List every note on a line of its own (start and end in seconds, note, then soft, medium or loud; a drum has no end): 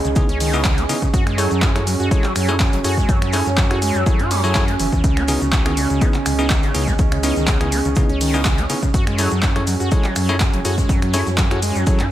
0.00 2.28 C#4 medium
0.00 12.12 C#4 medium
0.00 2.37 G#4 medium
0.00 1.98 D#5 medium
0.05 0.14 C#2 medium
0.05 0.08 C#3 medium
0.05 closed hi-hat soft
0.05 shaker soft
0.16 0.23 C#3 loud
0.16 0.28 B3 medium
0.16 0.28 D#4 medium
0.16 0.28 E4 medium
0.16 0.28 G#4 medium
0.16 kick loud
0.16 closed hi-hat medium
0.16 shaker medium
0.16 shaker soft
0.29 0.86 C#2 medium
0.29 0.39 C#4 medium
0.29 closed hi-hat medium
0.40 0.55 D#3 medium
0.40 open hi-hat medium
0.40 open hi-hat loud
0.40 shaker medium
0.53 0.63 C#3 loud
0.53 0.60 B3 loud
0.53 0.60 D#4 medium
0.53 0.60 E4 medium
0.53 0.60 G#4 loud
0.53 closed hi-hat soft
0.53 shaker soft
0.64 0.79 C#3 medium
0.64 kick loud
0.64 snare loud
0.64 clap loud
0.64 closed hi-hat medium
0.64 shaker medium
0.64 shaker soft
0.78 0.84 C#4 medium
0.78 closed hi-hat soft
0.78 closed hi-hat medium
0.89 0.94 C#3 medium
0.89 0.97 B3 medium
0.89 0.97 D#4 medium
0.89 0.97 E4 medium
0.89 0.97 G#4 loud
0.89 open hi-hat loud
0.89 shaker medium
1.02 1.08 C#3 loud
1.02 kick medium
1.02 closed hi-hat soft
1.02 shaker soft
1.14 1.47 F#2 loud
1.14 1.24 F#4 medium
1.14 6.61 F#4 medium
1.14 kick loud
1.14 closed hi-hat medium
1.14 shaker medium
1.14 shaker soft
1.27 1.39 G#3 medium
1.27 finger snap medium
1.27 closed hi-hat medium
1.38 1.49 F#3 loud
1.38 1.50 E4 medium
1.38 1.50 G#4 medium
1.38 1.50 A4 medium
1.38 1.50 C#5 loud
1.38 open hi-hat loud
1.38 shaker medium
1.51 1.96 F#2 medium
1.51 1.64 F#3 medium
1.51 closed hi-hat soft
1.51 shaker soft
1.57 6.61 C#5 medium
1.62 1.70 F#4 medium
1.62 kick loud
1.62 snare loud
1.62 clap loud
1.62 closed hi-hat medium
1.62 shaker medium
1.62 shaker soft
1.75 1.79 F#3 medium
1.75 1.82 E4 medium
1.75 1.82 G#4 medium
1.75 1.82 A4 medium
1.75 1.82 C#5 medium
1.75 finger snap medium
1.75 closed hi-hat medium
1.87 1.94 F#3 loud
1.87 open hi-hat loud
1.87 shaker medium
2.00 2.09 F#2 medium
2.00 2.09 F#4 medium
2.00 closed hi-hat soft
2.00 shaker soft
2.11 2.26 G#3 medium
2.11 2.24 E4 medium
2.11 2.24 G#4 medium
2.11 2.24 A4 medium
2.11 2.24 C#5 medium
2.11 kick loud
2.11 closed hi-hat medium
2.11 shaker medium
2.11 shaker soft
2.24 2.34 F#3 loud
2.24 clap soft
2.24 closed hi-hat medium
2.36 2.69 F#2 loud
2.36 2.50 F#3 medium
2.36 finger snap medium
2.36 open hi-hat loud
2.36 shaker medium
2.45 5.91 G#5 medium
2.45 closed hi-hat soft
2.49 2.55 E4 loud
2.49 2.55 F#4 medium
2.49 2.55 G#4 medium
2.49 2.55 A4 medium
2.49 2.55 C#5 loud
2.49 shaker soft
2.60 2.64 F#3 medium
2.60 kick loud
2.60 snare loud
2.60 clap loud
2.60 closed hi-hat medium
2.60 shaker medium
2.60 shaker soft
2.73 2.82 F#1 medium
2.73 2.79 F#3 loud
2.73 closed hi-hat medium
2.73 closed hi-hat soft
2.84 3.05 F#2 medium
2.84 2.92 E4 medium
2.84 2.95 F#4 medium
2.84 2.92 G#4 medium
2.84 2.92 A4 medium
2.84 2.92 C#5 loud
2.84 open hi-hat loud
2.84 shaker medium
2.97 3.10 G#3 medium
2.97 kick medium
2.97 snare soft
2.97 shaker soft
3.09 3.43 F#2 loud
3.09 3.19 F#3 loud
3.09 kick loud
3.09 closed hi-hat medium
3.09 shaker soft
3.09 shaker loud
3.22 3.35 F#3 medium
3.22 finger snap medium
3.22 closed hi-hat soft
3.33 3.46 E4 loud
3.33 3.40 F#4 medium
3.33 3.46 G#4 medium
3.33 3.46 A4 medium
3.33 3.46 C#5 loud
3.33 open hi-hat loud
3.33 shaker medium
3.46 3.91 F#2 medium
3.46 3.50 F#3 medium
3.46 snare soft
3.46 closed hi-hat soft
3.46 shaker soft
3.57 3.65 F#3 loud
3.57 kick loud
3.57 snare loud
3.57 clap loud
3.57 closed hi-hat medium
3.57 shaker medium
3.57 shaker soft
3.71 3.77 E4 medium
3.71 3.80 F#4 medium
3.71 3.77 G#4 medium
3.71 3.77 A4 medium
3.71 3.77 C#5 medium
3.71 finger snap medium
3.71 closed hi-hat medium
3.82 3.96 G#3 medium
3.82 open hi-hat loud
3.82 shaker medium
3.95 4.04 F#2 medium
3.95 4.04 F#3 loud
3.95 closed hi-hat soft
3.95 shaker soft
4.06 4.21 F#3 medium
4.06 4.19 E4 medium
4.06 4.19 G#4 medium
4.06 4.19 A4 medium
4.06 4.19 C#5 medium
4.06 kick loud
4.06 closed hi-hat medium
4.06 shaker medium
4.06 shaker soft
4.19 4.76 F#2 medium
4.19 4.32 F#4 medium
4.19 closed hi-hat soft
4.31 4.41 F#3 loud
4.31 open hi-hat loud
4.31 open hi-hat medium
4.31 shaker medium
4.44 4.53 F#3 medium
4.44 4.52 E4 loud
4.44 4.52 G#4 medium
4.44 4.52 A4 medium
4.44 4.52 C#5 loud
4.44 shaker soft
4.55 4.70 F#3 medium
4.55 4.63 E4 medium
4.55 4.63 G#4 medium
4.55 4.63 A4 medium
4.55 4.63 C#5 loud
4.55 kick loud
4.55 snare loud
4.55 clap loud
4.55 closed hi-hat medium
4.55 shaker medium
4.55 shaker soft
4.68 4.74 A3 medium
4.68 closed hi-hat soft
4.68 closed hi-hat medium
4.79 4.90 F#1 medium
4.79 4.87 E3 loud
4.79 open hi-hat loud
4.79 shaker medium
4.92 5.02 E2 loud
4.92 5.02 E3 medium
4.92 kick medium
4.92 closed hi-hat soft
4.92 shaker soft
5.04 5.38 C#2 loud
5.04 5.18 C#3 medium
5.04 10.51 C#4 medium
5.04 kick loud
5.04 closed hi-hat medium
5.04 shaker soft
5.04 shaker medium
5.17 5.23 C#4 medium
5.17 finger snap medium
5.17 closed hi-hat medium
5.28 5.33 C#3 medium
5.28 5.41 B3 medium
5.28 5.41 D#4 medium
5.28 5.41 E4 medium
5.28 5.41 G#4 loud
5.28 open hi-hat loud
5.28 ride medium
5.28 shaker medium
5.40 5.86 C#2 medium
5.40 5.47 C#3 loud
5.40 10.25 D#5 medium
5.40 closed hi-hat soft
5.40 shaker soft
5.52 5.63 C#4 medium
5.52 kick loud
5.52 snare loud
5.52 clap loud
5.52 closed hi-hat medium
5.52 shaker soft
5.52 shaker medium
5.66 5.79 D#3 medium
5.66 5.72 B3 medium
5.66 5.72 D#4 medium
5.66 5.72 E4 medium
5.66 5.72 G#4 medium
5.66 finger snap medium
5.66 closed hi-hat medium
5.77 5.88 C#3 loud
5.77 open hi-hat loud
5.77 ride medium
5.77 shaker medium
5.81 10.38 G#4 medium
5.90 5.99 C#2 medium
5.90 6.03 C#3 medium
5.90 closed hi-hat soft
5.90 shaker soft
6.01 6.14 B3 medium
6.01 6.09 C#4 medium
6.01 6.14 D#4 medium
6.01 6.14 E4 medium
6.01 6.14 G#4 medium
6.01 kick loud
6.01 closed hi-hat medium
6.01 shaker medium
6.01 shaker soft
6.14 6.18 C#3 medium
6.14 clap soft
6.14 closed hi-hat medium
6.26 6.60 C#2 medium
6.26 6.33 C#3 loud
6.26 finger snap medium
6.26 open hi-hat loud
6.26 ride medium
6.26 shaker medium
6.39 6.46 B3 loud
6.39 6.48 C#4 medium
6.39 6.46 D#4 medium
6.39 6.46 E4 medium
6.39 6.46 G#4 loud
6.39 closed hi-hat soft
6.39 shaker soft
6.50 6.65 D#3 medium
6.50 kick loud
6.50 snare loud
6.50 clap loud
6.50 closed hi-hat medium
6.50 shaker soft
6.50 shaker medium
6.63 6.73 G#1 medium
6.63 6.73 C#3 loud
6.63 closed hi-hat soft
6.63 closed hi-hat medium
6.75 6.95 C#2 loud
6.75 6.89 C#3 medium
6.75 6.82 B3 medium
6.75 6.82 D#4 medium
6.75 6.82 E4 medium
6.75 6.82 G#4 loud
6.75 open hi-hat loud
6.75 ride medium
6.75 shaker medium
6.87 6.94 C#4 medium
6.87 kick medium
6.87 snare soft
6.87 shaker soft
6.99 7.33 C#2 loud
6.99 7.03 C#3 medium
6.99 kick loud
6.99 closed hi-hat medium
6.99 shaker medium
6.99 shaker soft
7.12 7.18 C#3 loud
7.12 finger snap medium
7.12 closed hi-hat medium
7.23 7.36 B3 medium
7.23 7.34 C#4 medium
7.23 7.36 D#4 medium
7.23 7.36 E4 medium
7.23 7.36 G#4 loud
7.23 open hi-hat loud
7.23 ride medium
7.23 shaker medium
7.36 7.82 C#2 medium
7.36 7.49 D#3 medium
7.36 snare soft
7.36 closed hi-hat soft
7.36 shaker soft
7.47 7.58 C#3 loud
7.47 kick loud
7.47 snare loud
7.47 clap loud
7.47 closed hi-hat medium
7.47 shaker loud
7.47 shaker soft
7.61 7.74 C#3 medium
7.61 7.68 B3 medium
7.61 7.68 D#4 medium
7.61 7.68 E4 medium
7.61 7.68 G#4 medium
7.61 finger snap medium
7.61 closed hi-hat medium
7.72 7.79 C#4 medium
7.72 open hi-hat loud
7.72 ride medium
7.72 shaker medium
7.85 7.95 C#2 medium
7.85 7.89 C#3 medium
7.85 closed hi-hat soft
7.85 shaker soft
7.95 8.04 C#3 loud
7.95 8.09 B3 medium
7.95 8.09 D#4 medium
7.95 8.09 E4 medium
7.95 8.09 G#4 medium
7.95 kick loud
7.95 closed hi-hat medium
7.95 shaker medium
7.95 shaker soft
8.09 8.67 C#2 medium
8.09 8.19 C#4 medium
8.09 closed hi-hat medium
8.21 8.35 D#3 medium
8.21 open hi-hat medium
8.21 open hi-hat loud
8.21 ride medium
8.21 shaker medium
8.34 8.43 C#3 loud
8.34 8.41 B3 loud
8.34 8.41 D#4 medium
8.34 8.41 E4 medium
8.34 8.41 G#4 loud
8.34 shaker soft
8.45 8.60 C#3 medium
8.45 kick loud
8.45 snare loud
8.45 clap loud
8.45 closed hi-hat medium
8.45 shaker medium
8.45 shaker soft
8.58 8.65 C#4 medium
8.58 closed hi-hat soft
8.58 closed hi-hat medium
8.70 8.74 C#3 medium
8.70 8.77 B3 medium
8.70 8.77 D#4 medium
8.70 8.77 E4 medium
8.70 8.77 G#4 medium
8.70 open hi-hat loud
8.70 ride medium
8.70 shaker medium
8.83 8.89 C#3 loud
8.83 kick medium
8.83 closed hi-hat soft
8.83 shaker soft
8.94 9.28 F#2 loud
8.94 12.12 F#4 medium
8.94 9.05 F#4 medium
8.94 kick loud
8.94 closed hi-hat medium
8.94 shaker soft
8.94 shaker medium
9.07 9.20 G#3 medium
9.07 finger snap medium
9.07 closed hi-hat medium
9.18 9.29 F#3 loud
9.18 9.31 E4 medium
9.18 9.31 G#4 medium
9.18 9.31 A4 medium
9.18 9.31 C#5 loud
9.18 open hi-hat loud
9.18 ride medium
9.18 shaker medium
9.31 9.77 F#2 medium
9.31 9.44 F#3 medium
9.31 closed hi-hat soft
9.31 shaker soft
9.42 9.50 F#4 medium
9.42 kick loud
9.42 snare loud
9.42 clap loud
9.42 closed hi-hat medium
9.42 shaker medium
9.42 shaker soft
9.56 9.60 F#3 medium
9.56 9.63 E4 medium
9.56 9.63 G#4 medium
9.56 9.63 A4 medium
9.56 9.63 C#5 medium
9.56 finger snap medium
9.56 closed hi-hat medium
9.66 9.74 F#3 loud
9.66 12.12 C#5 medium
9.66 12.12 G#5 medium
9.66 open hi-hat loud
9.66 ride medium
9.66 shaker medium
9.80 9.90 F#2 medium
9.80 9.90 F#4 medium
9.80 closed hi-hat soft
9.80 shaker soft
9.91 10.06 G#3 medium
9.91 10.04 E4 medium
9.91 10.04 G#4 medium
9.91 10.04 A4 medium
9.91 10.04 C#5 medium
9.91 kick loud
9.91 closed hi-hat medium
9.91 shaker medium
9.91 shaker soft
10.04 10.14 F#3 loud
10.04 clap soft
10.04 closed hi-hat medium
10.16 10.50 F#2 loud
10.16 10.31 F#3 medium
10.16 finger snap medium
10.16 open hi-hat loud
10.16 ride medium
10.16 shaker medium
10.29 10.36 E4 loud
10.29 10.35 F#4 medium
10.29 10.36 G#4 medium
10.29 10.36 A4 medium
10.29 10.36 C#5 loud
10.29 closed hi-hat soft
10.29 shaker soft
10.40 10.45 F#3 medium
10.40 kick loud
10.40 snare loud
10.40 clap loud
10.40 closed hi-hat medium
10.40 shaker soft
10.40 shaker medium
10.53 10.63 F#1 loud
10.53 10.60 F#3 loud
10.53 closed hi-hat soft
10.53 closed hi-hat medium
10.65 10.85 F#2 medium
10.65 10.73 E4 medium
10.65 10.76 F#4 medium
10.65 10.73 G#4 medium
10.65 10.73 A4 medium
10.65 10.73 C#5 loud
10.65 open hi-hat loud
10.65 ride medium
10.65 shaker medium
10.78 10.91 G#3 medium
10.78 kick medium
10.78 snare soft
10.78 closed hi-hat soft
10.78 shaker soft
10.89 11.23 F#2 loud
10.89 11.00 F#3 loud
10.89 kick loud
10.89 closed hi-hat medium
10.89 shaker soft
10.89 shaker medium
11.02 11.15 F#3 medium
11.02 finger snap medium
11.02 closed hi-hat medium
11.14 11.26 E4 loud
11.14 11.21 F#4 medium
11.14 11.26 G#4 medium
11.14 11.26 A4 medium
11.14 11.26 C#5 loud
11.14 open hi-hat loud
11.14 ride medium
11.14 shaker medium
11.26 11.72 F#2 medium
11.26 11.30 F#3 medium
11.26 snare soft
11.26 closed hi-hat soft
11.26 shaker soft
11.38 11.45 F#3 loud
11.38 kick loud
11.38 snare loud
11.38 clap loud
11.38 closed hi-hat medium
11.38 shaker soft
11.38 shaker medium
11.51 11.58 E4 medium
11.51 11.60 F#4 medium
11.51 11.58 G#4 medium
11.51 11.58 A4 medium
11.51 11.58 C#5 medium
11.51 finger snap medium
11.51 closed hi-hat medium
11.62 11.77 G#3 medium
11.62 open hi-hat loud
11.62 ride medium
11.62 shaker medium
11.75 11.85 F#2 medium
11.75 11.85 F#3 loud
11.75 closed hi-hat soft
11.75 shaker soft
11.86 12.01 F#3 medium
11.86 11.99 E4 medium
11.86 11.99 G#4 medium
11.86 11.99 A4 medium
11.86 11.99 C#5 medium
11.86 kick loud
11.86 closed hi-hat medium
11.86 shaker medium
11.86 shaker soft
11.99 12.12 F#2 loud
11.99 12.06 F#4 medium
11.99 clap soft
11.99 closed hi-hat medium